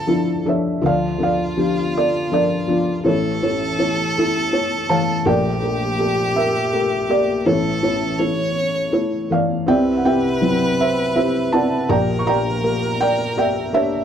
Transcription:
Already playing: felt piano D2 D3 F3 D4 F4 A4 D5, violin A4
0.07 felt piano F3 D4 E4
0.45 felt piano F3 D4 A4 C#5 E5
0.81 felt piano D2 D3 F3 D4 A4, violin F4
0.86 felt piano D5 F5
1.18 felt piano F3 D4 A4
1.23 felt piano D5 F5
1.57 felt piano F3 D4 G4
1.98 felt piano A4 D5
2.32 felt piano F3 D4 A4 A#4 D5
2.68 felt piano F3 D4 F4
3.04 felt piano A1 A2 A3 E4 A4 C#5, violin A4
3.42 felt piano A3 E4 A4 C#5
3.78 felt piano A3 E4 C#5
4.18 felt piano E4 A4
4.52 felt piano A3 E4 C#5
4.89 felt piano E3 A3 C#5 F5 A5
5.25 felt piano A#1 A#2 A3 G4 A#4 D5 G5, violin G4
5.62 felt piano A3 G4 A#4
5.98 felt piano A3 G4 A4
6.36 felt piano A#4 E5
6.72 felt piano A3 G4 A#4
7.09 felt piano A#3 G4 A#4 D5
7.45 felt piano A1 A2 A3 E4 A4 C#5, violin A4
7.82 felt piano A3 E4 C#5
8.18 felt piano A3 E4 C#5, violin C#5
8.92 felt piano A3 E4 C#5
9.30 felt piano E3 A3 A4 F5
9.34 felt piano D5
9.66 felt piano C2 C3 C4 E4 D5 E5 G5, violin B4
9.97 felt piano F#5
10.05 felt piano C4 E4 G4 E5 G5
10.41 felt piano F#3 C4 E4
10.80 felt piano C5 E5
11.15 felt piano C4 E4 G4 C5 E5
11.52 felt piano C4 E4 D5 F#5 A5
11.89 felt piano A#1 A#2 A#3 G4 D5 G5 A#5, violin A#4
12.19 felt piano C#6
12.26 felt piano A#3 G4 D5 G5 A#5
12.63 felt piano A#3 G4 A#4
13.01 felt piano D5 G5
13.37 felt piano A#3 G4 D5 G5
13.41 felt piano E5
13.73 felt piano A#3 D4 G4 C#5 E5

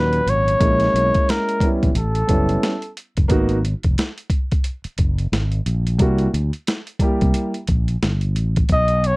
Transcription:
Already playing: fretless electric bass D#2, grand piano A#2 F#3 C#4 F#4, muted trumpet B4
0.13 closed hi-hat
0.26 fretless electric bass G#1, muted trumpet C#5, closed hi-hat
0.48 closed hi-hat
0.59 fretless electric bass A#1, grand piano G#3 A#3 C#4 E4, kick, closed hi-hat
0.80 snare, closed hi-hat
0.94 fretless electric bass B1, closed hi-hat
1.14 kick, closed hi-hat
1.29 muted trumpet A#4, snare, closed hi-hat
1.49 closed hi-hat
1.60 grand piano G3 B3 C#4 E4, kick, closed hi-hat
1.83 fretless electric bass A#1, kick, closed hi-hat
1.95 fretless electric bass A1, muted trumpet A4, closed hi-hat
2.15 closed hi-hat
2.27 fretless electric bass F#1, grand piano G3 B3 C#4 E4, kick, closed hi-hat
2.49 closed hi-hat
2.63 snare, closed hi-hat
2.82 closed hi-hat
2.97 closed hi-hat
3.17 fretless electric bass F#1, kick, closed hi-hat
3.28 fretless electric bass G#1, grand piano A#3 B3 D#4 F#4, kick, closed hi-hat
3.49 closed hi-hat
3.65 closed hi-hat
3.83 fretless electric bass F1, kick, closed hi-hat
3.98 snare, closed hi-hat
4.18 closed hi-hat
4.30 kick, closed hi-hat
4.52 kick, closed hi-hat
4.64 closed hi-hat
4.84 muted fretless electric bass stroke, closed hi-hat
4.98 fretless electric bass F#1, kick, closed hi-hat
5.18 closed hi-hat
5.32 fretless electric bass G#1, snare, closed hi-hat
5.52 closed hi-hat
5.66 fretless electric bass A#1, closed hi-hat
5.87 closed hi-hat
5.98 fretless electric bass C2, grand piano G3 A#3 E4 F#4, kick, closed hi-hat
6.18 closed hi-hat
6.34 fretless electric bass D2, closed hi-hat
6.53 closed hi-hat
6.67 snare, closed hi-hat
6.87 closed hi-hat
6.99 grand piano G3 A#3 E4 G4, kick, closed hi-hat
7.21 fretless electric bass C2, kick, closed hi-hat
7.34 closed hi-hat
7.54 closed hi-hat
7.67 fretless electric bass A#1, kick, closed hi-hat
7.88 closed hi-hat
8.02 fretless electric bass G1, snare, closed hi-hat
8.21 closed hi-hat
8.36 fretless electric bass A1, closed hi-hat
8.56 kick, closed hi-hat
8.69 fretless electric bass B1, muted trumpet D#5, kick, closed hi-hat
8.88 closed hi-hat
9.04 muted trumpet C#5, closed hi-hat

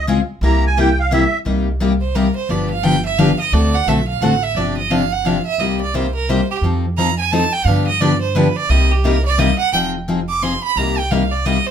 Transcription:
Already playing: upright bass C#2
0.07 steel-string acoustic guitar C#3 G#3 C4 F4 G#4
0.41 upright bass C2, steel-string acoustic guitar C3 G3 A#3 E4 G4, accordion A#5
0.67 accordion G#5
0.77 steel-string acoustic guitar C3 G3 A#3 E4 G4, accordion G5
1.00 accordion F5
1.11 steel-string acoustic guitar C3 G3 A#3 E4 G4, accordion E5
1.45 upright bass C2, steel-string acoustic guitar C3 G3 A#3 D#4 G4
1.80 steel-string acoustic guitar C3 G3 A#3 D#4 G4
2.01 violin C5
2.15 steel-string acoustic guitar C3 G3 A#3 D#4 G4, violin A#4
2.36 violin C5
2.49 upright bass G1, steel-string acoustic guitar D3 F3 B3 D4 G4, violin D5
2.71 violin F5
2.83 steel-string acoustic guitar D3 F3 B3 D4 G4, violin G5
3.06 violin E5
3.18 steel-string acoustic guitar D3 F3 B3 D4 G4, violin F5
3.40 violin D#5
3.52 upright bass D2, steel-string acoustic guitar D3 A3 C4 F#4 A4, violin D5
3.74 violin F#5
3.86 upright bass B1, steel-string acoustic guitar D3 A3 C4 F#4 A4, violin E5
4.08 violin F5
4.21 upright bass A1, steel-string acoustic guitar D3 A3 C4 F#4 A4, violin F#5
4.43 violin E5
4.55 upright bass G1, steel-string acoustic guitar C3 F3 C4 D4 G4, violin D5
4.77 violin D#5
4.90 steel-string acoustic guitar C3 F3 C4 D4 G4, violin F5
5.12 violin F#5
5.25 steel-string acoustic guitar C3 F3 C4 D4 G4, violin F5
5.46 violin E5
5.58 upright bass C2, steel-string acoustic guitar C3 G3 A#3 D#4 G4, violin D#5
5.81 violin D5
5.94 steel-string acoustic guitar C3 G3 A#3 D#4 G4, violin C5
6.15 violin A#4
6.29 steel-string acoustic guitar C3 G3 A#3 D#4 G4, violin C5
6.51 violin G4
6.61 upright bass F2, steel-string acoustic guitar F3 C4 D#4 A4
6.98 steel-string acoustic guitar F3 C4 D#4 A4, violin A#5
7.19 violin G#5
7.31 steel-string acoustic guitar F3 C4 D#4 A4, violin A5
7.53 violin G5
7.65 upright bass G2, steel-string acoustic guitar D3 F3 B3 D4 G4, violin F5
7.87 violin D#5
8.01 steel-string acoustic guitar D3 F3 B3 D4 G4, violin D5
8.21 violin C5
8.35 steel-string acoustic guitar D3 F3 B3 D4 G4, violin B4
8.56 violin D5
8.69 upright bass C2, steel-string acoustic guitar C3 G3 A#3 D#4 G4, violin D#5
8.91 violin G4
9.04 steel-string acoustic guitar C3 G3 A#3 D#4 G4, violin A#4
9.26 violin D5
9.38 steel-string acoustic guitar C3 G3 A#3 D#4 G4, violin D#5
9.59 violin F#5
9.73 upright bass F1, steel-string acoustic guitar F3 C4 D#4 G#4, violin G5
10.08 steel-string acoustic guitar F3 C4 D#4 G#4
10.29 violin D6
10.42 steel-string acoustic guitar F3 C4 D#4 G#4, violin C6
10.64 violin B5
10.76 upright bass C2, steel-string acoustic guitar C3 G3 A#3 D#4 G4, violin A#5
10.98 violin G5
11.11 steel-string acoustic guitar C3 G3 A#3 D#4 G4, violin F5
11.31 violin D5
11.45 steel-string acoustic guitar C3 G3 A#3 D#4 G4, violin D#5
11.67 violin C5

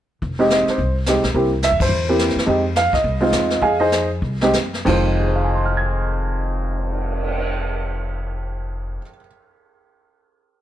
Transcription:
0.22 upright bass F1, brush sweep, kick
0.39 upright piano G#3 C4 D#4 G4
0.50 upright piano D#5, snare, hi-hat pedal
0.67 upright piano C5, muted upright bass stroke, snare
0.78 upright bass C2, brush sweep, kick
1.06 upright piano G#3 C4 D#4 G4, snare, hi-hat pedal
1.23 upright bass A#1, snare
1.34 upright bass C2, upright piano A#3 C4 E4 G4, brush sweep, kick
1.63 upright piano E5, snare, hi-hat pedal
1.72 upright bass E2
1.80 upright bass G2, upright piano C5, kick, ride
1.89 upright bass E2, brush sweep
2.09 upright piano A#3 C4 E4 G4
2.19 snare, hi-hat pedal
2.29 snare
2.35 upright bass E2, snare
2.46 upright bass F2, upright piano G#3 C4 D#4 G4, brush sweep, kick
2.76 upright piano F5, snare, hi-hat pedal
2.93 upright bass E2, upright piano D#5, kick, snare
3.04 upright bass C2, brush sweep, kick
3.21 upright piano G#3 C4 D#4 F4
3.32 upright bass E2, snare, hi-hat pedal
3.50 snare
3.62 upright bass F2, upright piano G#4 D#5 F5 G#5, brush sweep, kick
3.80 upright piano D#4 G#4 C5 D#5
3.92 snare, hi-hat pedal
4.22 upright bass C2, brush sweep, kick
4.41 upright piano G#3 C4 D#4 G4, snare
4.53 upright bass F#2, snare, hi-hat pedal
4.74 snare
4.85 upright bass F1, upright piano F2 D#3 G#3 F4, kick, crash
4.89 upright piano C5
5.07 cymbal swell
5.20 upright piano G#4
5.28 upright piano C5
5.36 upright piano F5
5.44 upright piano G#5
5.55 upright piano C6
5.65 upright piano F6
5.77 upright piano G#6

